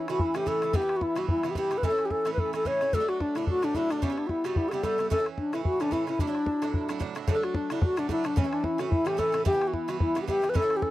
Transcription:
Already playing: C4 D4 E4 G4
0.08 A2 E3 C#4 E4 F#4, bodhran
0.19 E4, bodhran
0.34 A2 E3 C#4 E4 G4, bodhran
0.46 A2 E3 C#4 E4 A4, bodhran
0.62 A2 E3 C#4 E4, bodhran
0.73 G2 E3 B3 E4 G4, bodhran
0.82 E3 B3 E4
0.89 bodhran
0.97 F#4
1.01 E4, bodhran
1.16 G2 E3 B3 E4 F#4, bodhran
1.28 E4, bodhran
1.43 G2 E3 B3 E4, bodhran
1.50 G4
1.55 G2 E3 B3 E4 G4, bodhran
1.71 G2 E3 B3 E4, bodhran
1.78 B4
1.83 A2 E3 C#4 E4 A4, bodhran
1.90 E3 C#4 E4
1.99 bodhran
2.05 G4
2.10 A4, bodhran
2.25 A2 E3 C#4 E4, bodhran
2.34 B4, bodhran
2.39 A4
2.53 A2 E3 C#4 E4 A4, bodhran
2.65 A2 E3 C#4 E4 C#5, bodhran
2.81 A2 E3 C#4 E4, bodhran
2.93 A2 F#3 A3 D4 A4, bodhran
3.00 F#3 A3 D4
3.08 F#4, bodhran
3.20 D4, bodhran
3.35 A2 F#3 A3 D4 E4, bodhran
3.47 F#4, bodhran
3.62 A2 F#3 A3 D4, bodhran
3.74 A2 F#3 A3 D4 E4, bodhran
3.90 A2 F#3 A3 D4, bodhran
4.02 G2 G3 B3 C#4 E4, bodhran
4.10 G3 B3 E4
4.18 D4, bodhran
4.27 E4 F#4, bodhran
4.44 G2 G3 B3 E4 F#4, bodhran
4.56 E4, bodhran
4.69 G2 G3 G4 A4, bodhran
4.73 B3 E4
4.83 G2 G3 B3 E4 A4, bodhran
4.98 G2 G3 B3 E4, bodhran
5.10 A2 E3 C#4 E4 A4, bodhran
5.18 E3 C#4 E4
5.26 bodhran
5.38 D4, bodhran
5.53 A2 E3 C#4 E4, bodhran
5.65 F#4, bodhran
5.80 A2 E3 C#4 D4 E4, bodhran
5.91 A2 E3 C#4 E4, bodhran
6.07 A2 E3 C#4 E4, bodhran
6.19 A2 F#3 D4 E4, bodhran
6.27 F#3 D4 E4
6.35 bodhran
6.46 bodhran
6.62 A2 F#3 D4 E4, bodhran
6.74 bodhran
6.89 A2 F#3 D4 E4, bodhran
7.00 A2 F#3 D4 E4, bodhran
7.15 A2 F#3 D4 E4, bodhran
7.28 A2 F#3 A3 D4 A4, bodhran
7.34 F#3 A3 D4
7.43 F#4, bodhran
7.54 D4, bodhran
7.70 A2 F#3 A3 D4 E4, bodhran
7.82 F#4, bodhran
7.97 A2 F#3 A3 D4, bodhran
8.09 A2 F#3 A3 D4 E4, bodhran
8.24 A2 F#3 A3 D4, bodhran
8.36 A2 E3 C#4 E4, bodhran
8.44 E3 C#4 E4
8.53 D4, bodhran
8.64 E4, bodhran
8.78 A2 E3 C#4 E4 F#4, bodhran
8.90 E4, bodhran
9.05 A2 E3 C#4 E4 G4, bodhran
9.17 A2 E3 C#4 E4 A4, bodhran
9.32 A2 E3 C#4 E4, bodhran
9.45 G2 E3 B3 E4 G4, bodhran
9.52 E3 B3 E4
9.61 bodhran
9.68 F#4
9.73 E4, bodhran
9.88 G2 E3 B3 E4 F#4, bodhran
10.00 E4, bodhran
10.15 G2 E3 B3 E4, bodhran
10.22 G4
10.27 G2 E3 B3 E4 G4, bodhran
10.42 G2 E3 B3 E4, bodhran
10.50 B4
10.54 A2 E3 C#4 E4 A4, bodhran
10.62 E3 C#4 E4
10.70 bodhran
10.77 G4
10.82 A4, bodhran

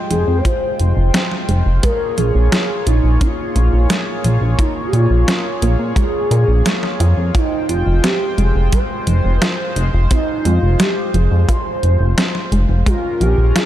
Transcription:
Already playing: G#3 F4 C5 G5
0.10 F1 F3 G#4, closed hi-hat
0.28 F2
0.38 C#5
0.45 F4 C5, kick, closed hi-hat
0.80 F1, closed hi-hat
0.97 F1
1.14 C4, snare, closed hi-hat
1.31 snare
1.49 F1 G#3, closed hi-hat
1.66 F1
1.83 G#3 A#3 G#4 A#4 C#5, kick, closed hi-hat
2.17 A#1 F3 G#4, closed hi-hat
2.35 A#1
2.52 F4, snare, closed hi-hat
2.86 A#1 D#4, closed hi-hat
3.04 A#1
3.21 C#4 F4, kick, closed hi-hat
3.56 A#1 A#3, closed hi-hat
3.73 A#1
3.90 G#3 D#4, snare, closed hi-hat
4.24 A#1 F3, closed hi-hat
4.41 A#1
4.59 D#4 F4, kick, closed hi-hat
4.87 G4
4.93 A#2 F4, closed hi-hat
5.10 A#1
5.28 C#4, snare, closed hi-hat
5.62 A#1 A#3 F4, closed hi-hat
5.79 A#2
5.96 G#3 G#4, kick, closed hi-hat
6.31 A#2 A#4, closed hi-hat
6.48 A#1
6.66 G#3, snare, closed hi-hat
6.83 snare
7.00 F2 F4, closed hi-hat
7.17 F2
7.34 G#3 D#4 F4 C5 G5, kick, closed hi-hat
7.69 F1 F4, closed hi-hat
7.87 F1
8.03 C4 G4, snare, closed hi-hat
8.38 F1 G#3 G#4, closed hi-hat
8.55 F1
8.72 G3 C5, kick, closed hi-hat
9.07 F1 F3, closed hi-hat
9.24 F1
9.42 F4 A#4, snare, closed hi-hat
9.76 F1, closed hi-hat
9.93 F1
10.11 C4 D#4, kick, closed hi-hat
10.45 F2 G#3 F4, closed hi-hat
10.62 F1
10.80 G3 G4, snare, closed hi-hat
11.14 F1 F3 G#4, closed hi-hat
11.31 F2
11.48 F4 C5, kick, closed hi-hat
11.83 F1, closed hi-hat
12.00 F1
12.18 C4, snare, closed hi-hat
12.35 snare
12.52 F1 G#3, closed hi-hat
12.69 F1
12.86 G#3 C#4 F4 A#4, kick, closed hi-hat
13.21 A#1 F3 G4, closed hi-hat
13.38 A#1
13.56 F4 G#4, snare, closed hi-hat

